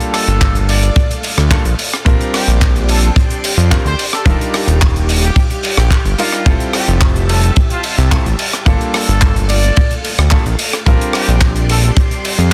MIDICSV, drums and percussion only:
0, 0, Header, 1, 2, 480
1, 0, Start_track
1, 0, Tempo, 550459
1, 1796, Time_signature, 4, 2, 24, 8
1, 10929, End_track
2, 0, Start_track
2, 0, Title_t, "Drums"
2, 4, Note_on_c, 9, 42, 60
2, 91, Note_off_c, 9, 42, 0
2, 120, Note_on_c, 9, 37, 61
2, 121, Note_on_c, 9, 46, 122
2, 122, Note_on_c, 9, 51, 94
2, 207, Note_off_c, 9, 37, 0
2, 208, Note_off_c, 9, 46, 0
2, 209, Note_off_c, 9, 51, 0
2, 240, Note_on_c, 9, 42, 52
2, 327, Note_off_c, 9, 42, 0
2, 359, Note_on_c, 9, 36, 119
2, 360, Note_on_c, 9, 42, 82
2, 362, Note_on_c, 9, 39, 127
2, 365, Note_on_c, 9, 51, 65
2, 446, Note_off_c, 9, 36, 0
2, 447, Note_off_c, 9, 42, 0
2, 449, Note_off_c, 9, 39, 0
2, 452, Note_off_c, 9, 51, 0
2, 482, Note_on_c, 9, 42, 54
2, 569, Note_off_c, 9, 42, 0
2, 600, Note_on_c, 9, 51, 79
2, 602, Note_on_c, 9, 46, 116
2, 687, Note_off_c, 9, 51, 0
2, 690, Note_off_c, 9, 46, 0
2, 721, Note_on_c, 9, 42, 53
2, 808, Note_off_c, 9, 42, 0
2, 835, Note_on_c, 9, 51, 66
2, 837, Note_on_c, 9, 36, 127
2, 841, Note_on_c, 9, 42, 75
2, 922, Note_off_c, 9, 51, 0
2, 925, Note_off_c, 9, 36, 0
2, 929, Note_off_c, 9, 42, 0
2, 966, Note_on_c, 9, 42, 60
2, 1053, Note_off_c, 9, 42, 0
2, 1074, Note_on_c, 9, 46, 99
2, 1083, Note_on_c, 9, 51, 88
2, 1162, Note_off_c, 9, 46, 0
2, 1170, Note_off_c, 9, 51, 0
2, 1199, Note_on_c, 9, 42, 57
2, 1202, Note_on_c, 9, 37, 77
2, 1286, Note_off_c, 9, 42, 0
2, 1289, Note_off_c, 9, 37, 0
2, 1314, Note_on_c, 9, 36, 127
2, 1315, Note_on_c, 9, 42, 71
2, 1320, Note_on_c, 9, 39, 127
2, 1401, Note_off_c, 9, 36, 0
2, 1402, Note_off_c, 9, 42, 0
2, 1407, Note_off_c, 9, 39, 0
2, 1441, Note_on_c, 9, 42, 59
2, 1529, Note_off_c, 9, 42, 0
2, 1558, Note_on_c, 9, 46, 105
2, 1561, Note_on_c, 9, 51, 82
2, 1645, Note_off_c, 9, 46, 0
2, 1648, Note_off_c, 9, 51, 0
2, 1685, Note_on_c, 9, 42, 59
2, 1687, Note_on_c, 9, 37, 62
2, 1773, Note_off_c, 9, 42, 0
2, 1775, Note_off_c, 9, 37, 0
2, 1796, Note_on_c, 9, 36, 127
2, 1799, Note_on_c, 9, 42, 78
2, 1802, Note_on_c, 9, 51, 67
2, 1884, Note_off_c, 9, 36, 0
2, 1886, Note_off_c, 9, 42, 0
2, 1889, Note_off_c, 9, 51, 0
2, 1925, Note_on_c, 9, 42, 52
2, 2012, Note_off_c, 9, 42, 0
2, 2039, Note_on_c, 9, 51, 84
2, 2041, Note_on_c, 9, 37, 63
2, 2047, Note_on_c, 9, 46, 113
2, 2126, Note_off_c, 9, 51, 0
2, 2128, Note_off_c, 9, 37, 0
2, 2134, Note_off_c, 9, 46, 0
2, 2173, Note_on_c, 9, 42, 50
2, 2260, Note_off_c, 9, 42, 0
2, 2276, Note_on_c, 9, 42, 75
2, 2278, Note_on_c, 9, 51, 66
2, 2280, Note_on_c, 9, 36, 125
2, 2284, Note_on_c, 9, 39, 127
2, 2363, Note_off_c, 9, 42, 0
2, 2365, Note_off_c, 9, 51, 0
2, 2367, Note_off_c, 9, 36, 0
2, 2371, Note_off_c, 9, 39, 0
2, 2405, Note_on_c, 9, 42, 49
2, 2492, Note_off_c, 9, 42, 0
2, 2517, Note_on_c, 9, 46, 106
2, 2521, Note_on_c, 9, 51, 85
2, 2604, Note_off_c, 9, 46, 0
2, 2608, Note_off_c, 9, 51, 0
2, 2639, Note_on_c, 9, 42, 52
2, 2726, Note_off_c, 9, 42, 0
2, 2757, Note_on_c, 9, 36, 118
2, 2764, Note_on_c, 9, 51, 66
2, 2766, Note_on_c, 9, 42, 82
2, 2844, Note_off_c, 9, 36, 0
2, 2851, Note_off_c, 9, 51, 0
2, 2853, Note_off_c, 9, 42, 0
2, 2882, Note_on_c, 9, 42, 54
2, 2969, Note_off_c, 9, 42, 0
2, 2999, Note_on_c, 9, 46, 120
2, 3006, Note_on_c, 9, 51, 88
2, 3086, Note_off_c, 9, 46, 0
2, 3093, Note_off_c, 9, 51, 0
2, 3124, Note_on_c, 9, 42, 58
2, 3212, Note_off_c, 9, 42, 0
2, 3239, Note_on_c, 9, 36, 110
2, 3242, Note_on_c, 9, 42, 76
2, 3243, Note_on_c, 9, 39, 116
2, 3326, Note_off_c, 9, 36, 0
2, 3329, Note_off_c, 9, 42, 0
2, 3330, Note_off_c, 9, 39, 0
2, 3365, Note_on_c, 9, 42, 60
2, 3453, Note_off_c, 9, 42, 0
2, 3479, Note_on_c, 9, 46, 113
2, 3481, Note_on_c, 9, 51, 85
2, 3566, Note_off_c, 9, 46, 0
2, 3568, Note_off_c, 9, 51, 0
2, 3602, Note_on_c, 9, 37, 63
2, 3613, Note_on_c, 9, 42, 50
2, 3689, Note_off_c, 9, 37, 0
2, 3700, Note_off_c, 9, 42, 0
2, 3711, Note_on_c, 9, 36, 127
2, 3721, Note_on_c, 9, 42, 79
2, 3726, Note_on_c, 9, 51, 73
2, 3799, Note_off_c, 9, 36, 0
2, 3808, Note_off_c, 9, 42, 0
2, 3813, Note_off_c, 9, 51, 0
2, 3848, Note_on_c, 9, 42, 58
2, 3936, Note_off_c, 9, 42, 0
2, 3957, Note_on_c, 9, 51, 84
2, 3958, Note_on_c, 9, 46, 101
2, 3960, Note_on_c, 9, 37, 66
2, 4045, Note_off_c, 9, 46, 0
2, 4045, Note_off_c, 9, 51, 0
2, 4047, Note_off_c, 9, 37, 0
2, 4080, Note_on_c, 9, 42, 56
2, 4167, Note_off_c, 9, 42, 0
2, 4196, Note_on_c, 9, 42, 81
2, 4200, Note_on_c, 9, 39, 123
2, 4201, Note_on_c, 9, 51, 70
2, 4205, Note_on_c, 9, 36, 123
2, 4283, Note_off_c, 9, 42, 0
2, 4287, Note_off_c, 9, 39, 0
2, 4288, Note_off_c, 9, 51, 0
2, 4293, Note_off_c, 9, 36, 0
2, 4326, Note_on_c, 9, 42, 52
2, 4413, Note_off_c, 9, 42, 0
2, 4438, Note_on_c, 9, 46, 120
2, 4449, Note_on_c, 9, 51, 95
2, 4525, Note_off_c, 9, 46, 0
2, 4536, Note_off_c, 9, 51, 0
2, 4560, Note_on_c, 9, 42, 57
2, 4647, Note_off_c, 9, 42, 0
2, 4674, Note_on_c, 9, 36, 116
2, 4674, Note_on_c, 9, 42, 80
2, 4674, Note_on_c, 9, 51, 68
2, 4761, Note_off_c, 9, 36, 0
2, 4761, Note_off_c, 9, 42, 0
2, 4761, Note_off_c, 9, 51, 0
2, 4800, Note_on_c, 9, 42, 52
2, 4887, Note_off_c, 9, 42, 0
2, 4910, Note_on_c, 9, 46, 115
2, 4924, Note_on_c, 9, 51, 85
2, 4998, Note_off_c, 9, 46, 0
2, 5011, Note_off_c, 9, 51, 0
2, 5035, Note_on_c, 9, 37, 87
2, 5043, Note_on_c, 9, 42, 59
2, 5122, Note_off_c, 9, 37, 0
2, 5130, Note_off_c, 9, 42, 0
2, 5149, Note_on_c, 9, 36, 116
2, 5154, Note_on_c, 9, 42, 81
2, 5155, Note_on_c, 9, 51, 64
2, 5164, Note_on_c, 9, 39, 120
2, 5237, Note_off_c, 9, 36, 0
2, 5241, Note_off_c, 9, 42, 0
2, 5242, Note_off_c, 9, 51, 0
2, 5251, Note_off_c, 9, 39, 0
2, 5279, Note_on_c, 9, 42, 53
2, 5366, Note_off_c, 9, 42, 0
2, 5393, Note_on_c, 9, 46, 117
2, 5402, Note_on_c, 9, 51, 87
2, 5480, Note_off_c, 9, 46, 0
2, 5489, Note_off_c, 9, 51, 0
2, 5513, Note_on_c, 9, 42, 52
2, 5515, Note_on_c, 9, 37, 57
2, 5601, Note_off_c, 9, 42, 0
2, 5602, Note_off_c, 9, 37, 0
2, 5632, Note_on_c, 9, 42, 72
2, 5633, Note_on_c, 9, 36, 127
2, 5637, Note_on_c, 9, 51, 79
2, 5719, Note_off_c, 9, 42, 0
2, 5720, Note_off_c, 9, 36, 0
2, 5724, Note_off_c, 9, 51, 0
2, 5757, Note_on_c, 9, 42, 54
2, 5844, Note_off_c, 9, 42, 0
2, 5872, Note_on_c, 9, 37, 67
2, 5874, Note_on_c, 9, 46, 107
2, 5875, Note_on_c, 9, 51, 82
2, 5959, Note_off_c, 9, 37, 0
2, 5962, Note_off_c, 9, 46, 0
2, 5962, Note_off_c, 9, 51, 0
2, 5999, Note_on_c, 9, 42, 49
2, 6087, Note_off_c, 9, 42, 0
2, 6110, Note_on_c, 9, 42, 76
2, 6114, Note_on_c, 9, 39, 115
2, 6114, Note_on_c, 9, 51, 66
2, 6117, Note_on_c, 9, 36, 116
2, 6197, Note_off_c, 9, 42, 0
2, 6202, Note_off_c, 9, 39, 0
2, 6202, Note_off_c, 9, 51, 0
2, 6204, Note_off_c, 9, 36, 0
2, 6241, Note_on_c, 9, 42, 51
2, 6328, Note_off_c, 9, 42, 0
2, 6359, Note_on_c, 9, 46, 117
2, 6359, Note_on_c, 9, 51, 86
2, 6446, Note_off_c, 9, 51, 0
2, 6447, Note_off_c, 9, 46, 0
2, 6484, Note_on_c, 9, 42, 54
2, 6571, Note_off_c, 9, 42, 0
2, 6593, Note_on_c, 9, 42, 79
2, 6595, Note_on_c, 9, 51, 65
2, 6598, Note_on_c, 9, 36, 118
2, 6680, Note_off_c, 9, 42, 0
2, 6682, Note_off_c, 9, 51, 0
2, 6685, Note_off_c, 9, 36, 0
2, 6717, Note_on_c, 9, 42, 54
2, 6804, Note_off_c, 9, 42, 0
2, 6831, Note_on_c, 9, 46, 102
2, 6833, Note_on_c, 9, 51, 96
2, 6918, Note_off_c, 9, 46, 0
2, 6920, Note_off_c, 9, 51, 0
2, 6962, Note_on_c, 9, 42, 60
2, 7049, Note_off_c, 9, 42, 0
2, 7078, Note_on_c, 9, 36, 118
2, 7080, Note_on_c, 9, 39, 118
2, 7080, Note_on_c, 9, 42, 68
2, 7165, Note_off_c, 9, 36, 0
2, 7167, Note_off_c, 9, 39, 0
2, 7167, Note_off_c, 9, 42, 0
2, 7204, Note_on_c, 9, 42, 61
2, 7291, Note_off_c, 9, 42, 0
2, 7315, Note_on_c, 9, 51, 97
2, 7320, Note_on_c, 9, 46, 108
2, 7402, Note_off_c, 9, 51, 0
2, 7407, Note_off_c, 9, 46, 0
2, 7442, Note_on_c, 9, 37, 57
2, 7443, Note_on_c, 9, 42, 51
2, 7529, Note_off_c, 9, 37, 0
2, 7530, Note_off_c, 9, 42, 0
2, 7553, Note_on_c, 9, 36, 117
2, 7555, Note_on_c, 9, 42, 80
2, 7555, Note_on_c, 9, 51, 71
2, 7640, Note_off_c, 9, 36, 0
2, 7642, Note_off_c, 9, 42, 0
2, 7642, Note_off_c, 9, 51, 0
2, 7681, Note_on_c, 9, 42, 55
2, 7768, Note_off_c, 9, 42, 0
2, 7795, Note_on_c, 9, 51, 94
2, 7797, Note_on_c, 9, 37, 71
2, 7803, Note_on_c, 9, 46, 109
2, 7882, Note_off_c, 9, 51, 0
2, 7884, Note_off_c, 9, 37, 0
2, 7891, Note_off_c, 9, 46, 0
2, 7926, Note_on_c, 9, 42, 55
2, 8013, Note_off_c, 9, 42, 0
2, 8035, Note_on_c, 9, 39, 108
2, 8036, Note_on_c, 9, 42, 73
2, 8036, Note_on_c, 9, 51, 73
2, 8041, Note_on_c, 9, 36, 125
2, 8122, Note_off_c, 9, 39, 0
2, 8123, Note_off_c, 9, 51, 0
2, 8124, Note_off_c, 9, 42, 0
2, 8128, Note_off_c, 9, 36, 0
2, 8163, Note_on_c, 9, 42, 56
2, 8250, Note_off_c, 9, 42, 0
2, 8274, Note_on_c, 9, 46, 98
2, 8281, Note_on_c, 9, 51, 83
2, 8361, Note_off_c, 9, 46, 0
2, 8368, Note_off_c, 9, 51, 0
2, 8396, Note_on_c, 9, 42, 51
2, 8483, Note_off_c, 9, 42, 0
2, 8514, Note_on_c, 9, 42, 77
2, 8519, Note_on_c, 9, 51, 74
2, 8521, Note_on_c, 9, 36, 127
2, 8601, Note_off_c, 9, 42, 0
2, 8606, Note_off_c, 9, 51, 0
2, 8608, Note_off_c, 9, 36, 0
2, 8638, Note_on_c, 9, 42, 55
2, 8725, Note_off_c, 9, 42, 0
2, 8759, Note_on_c, 9, 51, 88
2, 8760, Note_on_c, 9, 46, 98
2, 8846, Note_off_c, 9, 51, 0
2, 8847, Note_off_c, 9, 46, 0
2, 8880, Note_on_c, 9, 42, 56
2, 8884, Note_on_c, 9, 37, 93
2, 8967, Note_off_c, 9, 42, 0
2, 8971, Note_off_c, 9, 37, 0
2, 8987, Note_on_c, 9, 39, 122
2, 8996, Note_on_c, 9, 42, 75
2, 8998, Note_on_c, 9, 36, 115
2, 9075, Note_off_c, 9, 39, 0
2, 9083, Note_off_c, 9, 42, 0
2, 9085, Note_off_c, 9, 36, 0
2, 9120, Note_on_c, 9, 42, 55
2, 9208, Note_off_c, 9, 42, 0
2, 9232, Note_on_c, 9, 46, 114
2, 9234, Note_on_c, 9, 51, 93
2, 9319, Note_off_c, 9, 46, 0
2, 9322, Note_off_c, 9, 51, 0
2, 9359, Note_on_c, 9, 42, 57
2, 9360, Note_on_c, 9, 37, 66
2, 9446, Note_off_c, 9, 42, 0
2, 9447, Note_off_c, 9, 37, 0
2, 9473, Note_on_c, 9, 36, 109
2, 9475, Note_on_c, 9, 42, 81
2, 9477, Note_on_c, 9, 51, 68
2, 9561, Note_off_c, 9, 36, 0
2, 9562, Note_off_c, 9, 42, 0
2, 9564, Note_off_c, 9, 51, 0
2, 9603, Note_on_c, 9, 42, 58
2, 9690, Note_off_c, 9, 42, 0
2, 9708, Note_on_c, 9, 37, 70
2, 9716, Note_on_c, 9, 46, 106
2, 9723, Note_on_c, 9, 51, 82
2, 9795, Note_off_c, 9, 37, 0
2, 9803, Note_off_c, 9, 46, 0
2, 9810, Note_off_c, 9, 51, 0
2, 9841, Note_on_c, 9, 42, 55
2, 9928, Note_off_c, 9, 42, 0
2, 9948, Note_on_c, 9, 51, 65
2, 9949, Note_on_c, 9, 36, 116
2, 9951, Note_on_c, 9, 39, 107
2, 9955, Note_on_c, 9, 42, 73
2, 10035, Note_off_c, 9, 51, 0
2, 10036, Note_off_c, 9, 36, 0
2, 10038, Note_off_c, 9, 39, 0
2, 10043, Note_off_c, 9, 42, 0
2, 10077, Note_on_c, 9, 42, 54
2, 10164, Note_off_c, 9, 42, 0
2, 10196, Note_on_c, 9, 46, 106
2, 10197, Note_on_c, 9, 51, 82
2, 10283, Note_off_c, 9, 46, 0
2, 10285, Note_off_c, 9, 51, 0
2, 10321, Note_on_c, 9, 42, 56
2, 10408, Note_off_c, 9, 42, 0
2, 10434, Note_on_c, 9, 36, 117
2, 10434, Note_on_c, 9, 42, 88
2, 10435, Note_on_c, 9, 51, 70
2, 10521, Note_off_c, 9, 36, 0
2, 10522, Note_off_c, 9, 42, 0
2, 10522, Note_off_c, 9, 51, 0
2, 10562, Note_on_c, 9, 42, 57
2, 10649, Note_off_c, 9, 42, 0
2, 10678, Note_on_c, 9, 46, 107
2, 10681, Note_on_c, 9, 51, 95
2, 10766, Note_off_c, 9, 46, 0
2, 10768, Note_off_c, 9, 51, 0
2, 10804, Note_on_c, 9, 42, 58
2, 10891, Note_off_c, 9, 42, 0
2, 10929, End_track
0, 0, End_of_file